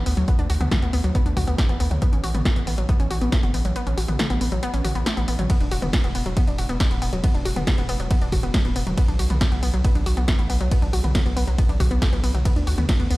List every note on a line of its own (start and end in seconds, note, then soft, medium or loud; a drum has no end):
0.06 0.14 D2 medium
0.06 0.13 B3 medium
0.06 open hi-hat loud
0.17 0.25 D2 medium
0.17 0.24 F#3 medium
0.17 closed hi-hat soft
0.28 0.38 B3 loud
0.28 kick loud
0.28 closed hi-hat medium
0.39 0.47 D2 medium
0.39 0.43 D4 medium
0.39 closed hi-hat soft
0.50 0.57 D2 loud
0.50 0.54 F#4 medium
0.50 open hi-hat loud
0.61 0.68 D2 medium
0.61 0.67 B3 medium
0.61 closed hi-hat soft
0.61 mid tom medium
0.71 0.82 A3 medium
0.71 kick loud
0.71 snare loud
0.71 closed hi-hat medium
0.71 mid tom medium
0.82 0.90 D2 medium
0.82 0.89 B3 medium
0.82 closed hi-hat soft
0.93 1.01 D2 loud
0.93 1.00 B3 medium
0.93 open hi-hat loud
1.04 1.12 D2 medium
1.04 1.11 F#3 medium
1.04 closed hi-hat soft
1.15 1.25 B3 loud
1.15 kick loud
1.15 closed hi-hat medium
1.26 1.34 D2 medium
1.26 1.30 D4 medium
1.26 closed hi-hat soft
1.37 1.44 D2 loud
1.37 1.41 F#4 medium
1.37 kick medium
1.37 open hi-hat loud
1.37 mid tom medium
1.48 1.55 D2 medium
1.48 1.54 B3 medium
1.48 closed hi-hat soft
1.58 1.69 A3 medium
1.58 kick loud
1.58 snare loud
1.58 closed hi-hat medium
1.69 1.77 A1 medium
1.69 1.76 B3 medium
1.69 closed hi-hat soft
1.80 1.88 D2 loud
1.80 1.87 B3 medium
1.80 open hi-hat loud
1.91 1.99 D2 medium
1.91 1.98 F#3 medium
1.91 closed hi-hat soft
1.91 mid tom medium
2.02 2.12 B3 loud
2.02 kick loud
2.02 closed hi-hat medium
2.13 2.21 A1 medium
2.13 2.17 C#4 medium
2.13 closed hi-hat soft
2.24 2.31 A1 loud
2.24 2.28 F#4 medium
2.24 open hi-hat loud
2.35 2.42 A1 medium
2.35 2.41 B3 medium
2.35 closed hi-hat soft
2.35 mid tom medium
2.45 2.56 A3 medium
2.45 kick loud
2.45 snare loud
2.45 closed hi-hat medium
2.45 mid tom medium
2.56 2.64 A1 medium
2.56 2.63 B3 medium
2.56 closed hi-hat soft
2.67 2.75 A1 loud
2.67 2.74 B3 medium
2.67 open hi-hat loud
2.78 2.86 A1 medium
2.78 2.85 F#3 medium
2.78 closed hi-hat soft
2.89 2.99 B3 loud
2.89 kick loud
2.89 closed hi-hat medium
3.00 3.08 A1 medium
3.00 3.04 C#4 medium
3.00 closed hi-hat soft
3.11 3.18 A1 loud
3.11 3.15 F#4 medium
3.11 open hi-hat loud
3.21 3.29 A1 medium
3.21 3.28 B3 medium
3.21 closed hi-hat soft
3.32 3.43 A3 medium
3.32 kick loud
3.32 snare loud
3.32 closed hi-hat medium
3.43 3.51 F#1 medium
3.43 3.50 B3 medium
3.43 closed hi-hat soft
3.54 3.62 A1 loud
3.54 3.61 B3 medium
3.54 open hi-hat loud
3.65 3.73 A1 medium
3.65 3.72 F#3 medium
3.65 closed hi-hat soft
3.76 3.86 B3 loud
3.76 closed hi-hat medium
3.87 3.94 A1 medium
3.87 3.91 C#4 medium
3.87 closed hi-hat soft
3.97 4.05 A1 loud
3.97 4.02 F#4 medium
3.97 open hi-hat loud
4.08 4.16 A1 medium
4.08 4.15 B3 medium
4.08 closed hi-hat soft
4.08 mid tom medium
4.19 4.30 A3 medium
4.19 snare loud
4.19 closed hi-hat medium
4.19 mid tom medium
4.30 4.38 A1 medium
4.30 4.37 B3 medium
4.30 closed hi-hat soft
4.41 4.49 A1 loud
4.41 4.48 B3 medium
4.41 open hi-hat loud
4.52 4.60 A1 medium
4.52 4.59 F#3 medium
4.52 closed hi-hat soft
4.63 4.73 B3 loud
4.63 closed hi-hat medium
4.74 4.81 A1 medium
4.74 4.78 C#4 medium
4.74 closed hi-hat soft
4.84 4.92 A1 loud
4.84 4.89 F#4 medium
4.84 open hi-hat loud
4.84 mid tom medium
4.95 5.03 A1 medium
4.95 5.02 B3 medium
4.95 closed hi-hat soft
5.06 5.16 A3 medium
5.06 snare loud
5.06 closed hi-hat medium
5.17 5.25 A1 medium
5.17 5.24 B3 medium
5.17 closed hi-hat soft
5.28 5.36 A1 medium
5.28 5.35 B3 medium
5.28 open hi-hat loud
5.39 5.47 A1 medium
5.39 5.46 F#3 medium
5.39 closed hi-hat soft
5.39 mid tom medium
5.50 5.60 B3 loud
5.50 kick loud
5.50 closed hi-hat medium
5.50 ride medium
5.61 5.68 E1 medium
5.61 5.65 D4 medium
5.61 closed hi-hat soft
5.71 5.79 E1 loud
5.71 5.76 F#4 medium
5.71 open hi-hat loud
5.82 5.90 E1 medium
5.82 5.89 B3 medium
5.82 closed hi-hat soft
5.82 mid tom medium
5.93 6.03 G#3 medium
5.93 kick loud
5.93 snare loud
5.93 closed hi-hat medium
5.93 mid tom medium
5.93 ride medium
6.04 6.12 E1 medium
6.04 6.11 B3 medium
6.04 closed hi-hat soft
6.15 6.23 E1 loud
6.15 6.22 B3 medium
6.15 open hi-hat loud
6.26 6.34 E1 medium
6.26 6.33 F#3 medium
6.26 closed hi-hat soft
6.37 6.47 B3 loud
6.37 kick loud
6.37 closed hi-hat medium
6.37 ride medium
6.48 6.55 E1 medium
6.48 6.52 D4 medium
6.48 closed hi-hat soft
6.58 6.66 E1 loud
6.58 6.63 F#4 medium
6.58 open hi-hat loud
6.69 6.77 E1 medium
6.69 6.76 B3 medium
6.69 closed hi-hat soft
6.80 6.90 G#3 medium
6.80 kick loud
6.80 snare loud
6.80 closed hi-hat medium
6.80 ride medium
6.91 6.99 D1 medium
6.91 6.98 B3 medium
6.91 closed hi-hat soft
7.02 7.10 E1 medium
7.02 7.09 B3 medium
7.02 open hi-hat loud
7.13 7.21 E1 medium
7.13 7.20 F#3 medium
7.13 closed hi-hat soft
7.24 7.34 B3 loud
7.24 kick loud
7.24 closed hi-hat medium
7.24 ride medium
7.34 7.42 E1 medium
7.34 7.39 D4 medium
7.34 closed hi-hat soft
7.45 7.53 E1 loud
7.45 7.49 F#4 medium
7.45 open hi-hat loud
7.56 7.64 E1 medium
7.56 7.63 B3 medium
7.56 closed hi-hat soft
7.56 mid tom medium
7.67 7.77 G#3 medium
7.67 kick loud
7.67 snare loud
7.67 closed hi-hat medium
7.67 mid tom medium
7.67 ride medium
7.78 7.86 E1 medium
7.78 7.85 B3 medium
7.78 closed hi-hat soft
7.89 7.97 E1 loud
7.89 7.96 B3 medium
7.89 open hi-hat loud
8.00 8.07 E1 medium
8.00 8.07 F#3 medium
8.00 closed hi-hat soft
8.11 8.21 B3 loud
8.11 kick loud
8.11 closed hi-hat medium
8.11 ride medium
8.21 8.29 E1 medium
8.21 8.26 D4 medium
8.21 closed hi-hat soft
8.32 8.40 E1 loud
8.32 8.37 F#4 medium
8.32 kick medium
8.32 open hi-hat loud
8.32 mid tom medium
8.43 8.51 E1 medium
8.43 8.50 B3 medium
8.43 closed hi-hat soft
8.54 8.64 G#3 medium
8.54 kick loud
8.54 snare loud
8.54 closed hi-hat medium
8.54 ride medium
8.65 8.73 D1 medium
8.65 8.72 B3 medium
8.65 closed hi-hat soft
8.76 8.84 E1 loud
8.76 8.83 B3 medium
8.76 open hi-hat loud
8.87 8.94 E1 medium
8.87 8.93 F#3 medium
8.87 closed hi-hat soft
8.87 mid tom medium
8.97 9.08 B3 loud
8.97 kick loud
8.97 closed hi-hat medium
8.97 ride medium
9.08 9.16 B1 medium
9.08 9.12 D4 medium
9.08 closed hi-hat soft
9.19 9.27 B1 loud
9.19 9.23 F#4 medium
9.19 open hi-hat loud
9.30 9.38 B1 medium
9.30 9.37 B3 medium
9.30 closed hi-hat soft
9.30 mid tom medium
9.41 9.51 A3 medium
9.41 kick loud
9.41 snare loud
9.41 closed hi-hat medium
9.41 mid tom medium
9.41 ride medium
9.52 9.60 B1 medium
9.52 9.59 B3 medium
9.52 closed hi-hat soft
9.63 9.71 B1 loud
9.63 9.70 B3 medium
9.63 open hi-hat loud
9.74 9.81 B1 medium
9.74 9.80 F#3 medium
9.74 closed hi-hat soft
9.84 9.95 B3 loud
9.84 kick loud
9.84 closed hi-hat medium
9.84 ride medium
9.95 10.03 B1 medium
9.95 9.99 D4 medium
9.95 closed hi-hat soft
10.06 10.14 B1 loud
10.06 10.10 F#4 medium
10.06 open hi-hat loud
10.17 10.25 B1 medium
10.17 10.24 B3 medium
10.17 closed hi-hat soft
10.28 10.38 A3 medium
10.28 kick loud
10.28 snare loud
10.28 closed hi-hat medium
10.28 ride medium
10.39 10.47 A1 medium
10.39 10.46 B3 medium
10.39 closed hi-hat soft
10.50 10.58 B1 loud
10.50 10.57 B3 medium
10.50 open hi-hat loud
10.61 10.68 B1 medium
10.61 10.67 F#3 medium
10.61 closed hi-hat soft
10.71 10.82 B3 loud
10.71 kick loud
10.71 closed hi-hat medium
10.71 ride medium
10.82 10.90 B1 medium
10.82 10.86 D4 medium
10.82 closed hi-hat soft
10.93 11.01 B1 loud
10.93 10.97 F#4 medium
10.93 open hi-hat loud
11.04 11.12 B1 medium
11.04 11.11 B3 medium
11.04 closed hi-hat soft
11.04 mid tom medium
11.15 11.25 A3 medium
11.15 kick loud
11.15 snare loud
11.15 closed hi-hat medium
11.15 mid tom medium
11.15 ride medium
11.26 11.34 B1 medium
11.26 11.33 B3 medium
11.26 closed hi-hat soft
11.37 11.45 B1 loud
11.37 11.43 B3 medium
11.37 open hi-hat loud
11.47 11.55 B1 medium
11.47 11.54 F#3 medium
11.47 closed hi-hat soft
11.58 11.69 B3 loud
11.58 kick loud
11.58 closed hi-hat medium
11.58 ride medium
11.69 11.77 B1 medium
11.69 11.73 D4 medium
11.69 closed hi-hat soft
11.80 11.88 B1 loud
11.80 11.84 F#4 medium
11.80 kick medium
11.80 open hi-hat loud
11.80 mid tom medium
11.91 11.99 B1 medium
11.91 11.98 B3 medium
11.91 closed hi-hat soft
12.02 12.12 A3 medium
12.02 kick loud
12.02 snare loud
12.02 closed hi-hat medium
12.02 ride medium
12.13 12.21 B1 medium
12.13 12.20 B3 medium
12.13 closed hi-hat soft
12.24 12.31 B1 loud
12.24 12.30 B3 medium
12.24 open hi-hat loud
12.34 12.42 B1 medium
12.34 12.41 F#3 medium
12.34 closed hi-hat soft
12.34 mid tom medium
12.45 12.56 B3 loud
12.45 kick loud
12.45 closed hi-hat medium
12.45 ride medium
12.56 12.64 D2 medium
12.56 12.60 D4 medium
12.56 closed hi-hat soft
12.67 12.75 D2 loud
12.67 12.71 F#4 medium
12.67 open hi-hat loud
12.78 12.86 D2 medium
12.78 12.85 B3 medium
12.78 closed hi-hat soft
12.78 mid tom medium
12.89 12.99 A3 medium
12.89 kick loud
12.89 snare loud
12.89 closed hi-hat medium
12.89 mid tom medium
12.89 ride medium
13.00 13.07 D2 medium
13.00 13.06 B3 medium
13.00 closed hi-hat soft
13.11 13.17 D2 loud
13.11 13.17 B3 medium
13.11 open hi-hat loud